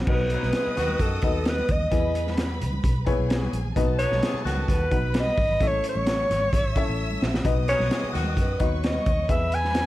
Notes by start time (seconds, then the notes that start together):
0.07 B1 B2 B3 D#4 F#4 B4 D#5 D#6, kick, crash, low conga
0.20 muted conga
0.30 F#3 D#4 B4, closed hi-hat
0.43 B1, snare, high conga
0.53 G#3 E4 G#4, snare, closed hi-hat
0.67 muted fingered electric bass stroke
0.76 D#2 D#3 B3 F#4, snare, closed hi-hat, low conga
0.88 high conga
0.99 F#2 A4, kick, closed hi-hat, muted conga
1.12 muted conga
1.22 D#2 B3 D#4 F#4 B4 D#5, kick, closed hi-hat
1.45 B4, snare, closed hi-hat, muted conga
1.58 high conga
1.69 D#2 D#5, kick, closed hi-hat
1.81 low conga
1.91 E2 E3 B3 E4 G#4 B4 G#5 B5, kick, closed hi-hat, muted conga, low conga
2.15 closed hi-hat
2.27 snare, high conga
2.37 snare, closed hi-hat, muted conga
2.61 C#2, closed hi-hat, low conga
2.73 high conga
2.84 B1, kick, closed hi-hat
2.96 muted conga
3.06 B3 E4 G#4 B4 C#5 G#5, kick, closed hi-hat
3.19 B1
3.30 snare, closed hi-hat
3.42 high conga
3.53 A#1, closed hi-hat
3.66 low conga
3.76 B1 B2 B3 D#4 F#4 A4 B4 D#5 A5, kick, closed hi-hat, muted conga, low conga
3.98 F#3 D#4 B4 C#5, closed hi-hat
4.11 B1, snare, high conga
4.22 G#3 E4 G#4, snare, closed hi-hat, muted conga
4.34 muted fingered electric bass stroke, muted conga
4.44 C#2 D#3 B3 F#4, snare, closed hi-hat, low conga
4.56 high conga
4.68 D#2 B4, kick, closed hi-hat
4.81 muted conga
4.91 B1 B3 D#4 F#4 B4 F#5 B5, kick, closed hi-hat
5.14 snare, closed hi-hat
5.19 D#5
5.26 muted conga, high conga
5.37 G#1, kick, open hi-hat
5.50 low conga
5.61 A1 A2 C#4 E4 A4 C#5 E5 C#6, kick, closed hi-hat, muted conga, low conga
5.67 C#5
5.72 muted conga
5.84 closed hi-hat
5.89 C#5
5.95 A1, high conga
6.06 snare, closed hi-hat
6.18 muted conga
6.29 G#1, snare, closed hi-hat, low conga
6.41 high conga
6.53 G#1 E5 E6, kick, closed hi-hat, muted conga
6.64 muted conga
6.76 C#4 E4 A4 C#5 E5, kick, closed hi-hat
6.88 A1
7.11 muted conga, high conga
7.21 A#1, snare, high conga
7.34 snare, low conga
7.45 B1 B2 B3 D#4 F#4 B4 D#5 D#6, kick, closed hi-hat, low conga
7.55 muted conga
7.68 F#3 D#4 B4 C#5, closed hi-hat
7.79 B1, snare, high conga
7.90 G#3 E4 G#4, snare, closed hi-hat
8.01 muted fingered electric bass stroke, muted conga
8.12 D#2 D#3 B3 F#4, snare, closed hi-hat, low conga
8.24 high conga
8.37 F#2, kick, closed hi-hat, muted conga
8.42 B4
8.49 muted conga
8.60 D#2 B3 D#4 F#4 B4 C#5 D#5 C#6, kick, closed hi-hat
8.84 D#5, snare, closed hi-hat
8.94 muted conga, high conga
9.06 D#2, kick, closed hi-hat
9.19 low conga
9.28 E2 E3 B3 E4 G#4 B4 E5 B5, kick, closed hi-hat, muted conga, low conga
9.40 muted conga
9.52 G#5, closed hi-hat
9.64 snare, high conga
9.74 snare, closed hi-hat, muted conga